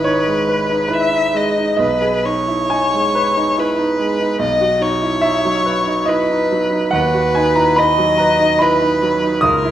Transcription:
Already playing: G#1 D#4 E4 G#4 B4
0.04 D#4 C#5
0.27 G#3
0.48 B4
0.70 D#4
0.88 E4 B4
0.93 E5
1.12 D#4
1.34 G#3 D#5
1.57 D#4
1.77 B1 B4 D#5
2.01 G#4
2.25 D#4 C#5
2.48 E4
2.70 D#4 G#5
2.93 G#3
3.15 B4
3.37 D#4
3.58 E4 B4
3.78 D#4
3.99 G#3
4.20 D#4
4.39 B1 D#5
4.61 F#4
4.80 D#4 C#5
5.02 E4
5.21 D#4 E5
5.45 F#3
5.66 B4
5.86 D#4
6.06 E4 B4 D#5
6.30 D#4
6.52 F#3
6.72 D#4
6.91 D#2 B4 F#5
7.14 F#4
7.35 D#4 G#5
7.55 E4 A#5
7.76 D#4 D#5 B5
7.98 F#3
8.18 B4 A#5
8.40 D#4
8.59 E4 B4 B5
8.82 D#4
9.02 F#3
9.23 D#4
9.41 C#2 A#4 D#6
9.65 E4

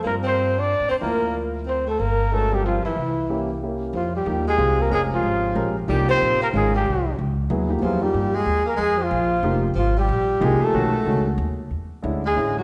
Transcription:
0.03 G2 G3 A#3 C4 F4 A#4
0.23 C4
0.27 C5
0.57 D4 D5
0.80 A2
0.89 F#2 C4 C5
1.01 D2 F3 A#3 E4 A#4
1.66 C4 C5
1.87 A3 A4
1.99 G1 A#3 A#4
2.32 G#3 A3 C#4 F#4 A4 B4
2.51 G3 C4 F4 G4 A#4
2.64 F3 F4
2.85 E3 E4, muted upright bass stroke
2.96 C2
3.30 A#3 C#4 E4 G4
3.62 A#3 C#4 E4 G4
3.93 F2 F3 F4
4.15 G3 G4
4.26 D#2 F3 A#3 D#4 G4
4.47 G#3 G#4
4.57 C2 C4 F4 G4 G#4
4.80 A#3 A#4
4.90 F1 G#3 C#4 G4 A#4
4.94 G#4
5.12 F3 F4
5.23 G#1
5.55 A#1 G#3 C#4 G4 A#4
5.88 C2 F3 G3 A#3 D#4 G4
5.92 G4
6.08 C4 C5
6.21 A#1
6.41 A#3 A#4, muted upright bass stroke
6.52 G#1 D#3 G#3 C#4 F4
6.57 G#4
6.74 G3 G4
6.86 C2
7.19 C#2
7.50 D#2 F#3 B3 E4 G#4
7.69 F3 A#3 D#4 G4
7.81 F2 F3 F#3 B3 E4 F4 G#4
8.01 F3 G3 A#3 D#4 G4
8.14 G2
8.34 G#3 G#4
8.46 D#2
8.65 A#3 A#4
8.77 F2 G#3
8.81 G#4
8.97 F3
9.03 F4
9.11 A#1
9.43 F1 F3 A#3 D#4 G4
9.75 G#1 F3
9.79 F4
9.97 G3 G4
10.09 A#1
10.40 C2 F3 G#3 A#3 D#4 G4
10.45 G#4
10.61 A3, muted upright bass stroke
10.65 A4
10.74 B1 D#3 G#3 C#4 F#4
11.06 C#2 D#3 G#3 C#4 F#4
11.38 D#2
11.71 E2
12.03 D2 D3 G#3 C#4 E4
12.25 G#3 G#4
12.36 A1 D3 G#3 C#4 E4
12.57 F#3 F#4

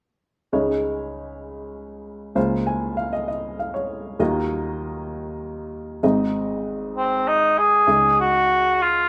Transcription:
0.53 C#2 C#3 G#3 C#4 D#4 C#5
2.35 C#2 C#3 A#3 C#4 F4 C5
2.67 G#5
2.97 F5
3.13 D#5
3.28 D#5
3.59 F5
3.74 C#5
4.19 D#2 D#3 A#3 F4 F#4 D#5
6.03 G#1 G#2 C4 D#4 G#4 D#5
6.97 C4
7.27 D#4
7.58 G#4
7.87 C#2 C#3 C#4 D#4 G#4 D#5
8.20 F#4
8.82 F4

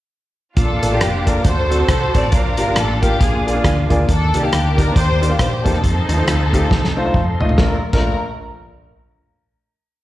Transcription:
0.56 A#1 A#2 A#3 D4 F4 A4 F5 A5 D6, kick, closed hi-hat
0.82 A1 A#3 F4 A4 D5, closed hi-hat
0.91 A#3 D4 F4 G4 A4 D5
1.01 F1, cross-stick, closed hi-hat
1.26 A#3 F4 A4 A#4 D5, kick, closed hi-hat
1.44 D2 D3 F#4 A4 C5 F#5, kick, closed hi-hat
1.70 C4 F#4 A4 D5, closed hi-hat
1.78 C4 F#4 A4 C5
1.88 C2 C5, kick, cross-stick, closed hi-hat
2.14 A1 C4 F#4 A4 C5 D5, kick, closed hi-hat
2.23 cross-stick
2.32 A#1 A#2 A#3 D4 F4 A#4 F5 G5 D6, kick, closed hi-hat
2.57 G1 A#3 F4 G4 D5, closed hi-hat
2.67 A#3 F4 G4 D5
2.76 A1 A4, cross-stick, closed hi-hat
3.02 A#3 F4 G4 A#4, kick, cross-stick, closed hi-hat
3.20 A#1 A#2 D4 F4 G#4 G#5, kick, closed hi-hat
3.46 A#3 F4 G#4 D5, closed hi-hat
3.54 A#3 F4 G#4 D5
3.64 D2, kick, cross-stick, closed hi-hat
3.90 D2 A#3 F4 G#4 D5, kick, closed hi-hat
4.08 D#2 D#3 D4 A4 D5 G5, kick, closed hi-hat
4.34 C2 A#3 D#4 G4 D5, closed hi-hat
4.43 A#3 D4 D#4 G4 F5
4.52 D2, cross-stick, closed hi-hat
4.77 A#3 D#4 G4 A#4 D5, kick, closed hi-hat
4.96 D#2 G4 C5, kick, closed hi-hat
5.21 A#3 D#4 G4 D5, closed hi-hat
5.29 A#3 D#4 G4 F5
5.39 A#2 C5, kick, cross-stick, closed hi-hat
5.64 E2 A#3 C4 D#4 G4 A4 C5, kick, closed hi-hat
5.74 cross-stick
5.83 F2 A4 D#5 F5 C6, kick, closed hi-hat
6.08 D#2 A3 D#4 F4 C5, closed hi-hat
6.17 A3 D#4 F4 C5
6.26 D2, cross-stick, closed hi-hat
6.52 A3 D#4 F4 G4, kick, closed hi-hat
6.71 C2, kick, snare
6.84 snare
6.97 A3 D#4 F4 C5 F5
7.04 A3 D#4 F4 C5
7.14 F2 A5, kick, mid tom
7.40 A1 A3 D#4 F4 D#5, floor tom
7.49 floor tom
7.58 A#1 A3 A#3 D4 F4 A4 A#4 D5, kick, snare
7.93 A#1 A3 D4 F4 A#4, kick, crash

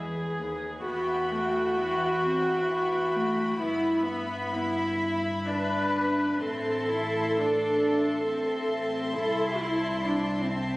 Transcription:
Already playing: E2 G#4 B4
0.38 D#2
0.85 E2 B3 F#4 E5 G5 B5
1.31 A3
1.77 B3
2.24 C4
2.70 B3
3.15 A3
3.60 G1 B3 E4 E5
4.08 B3
4.54 E4
5.46 D4 B4
6.40 A1 C4 A4 E5 A5 C6
6.90 E4
7.37 D4
8.25 C4
9.15 C2 E4 A4
9.59 E4
10.02 D4
10.45 C4

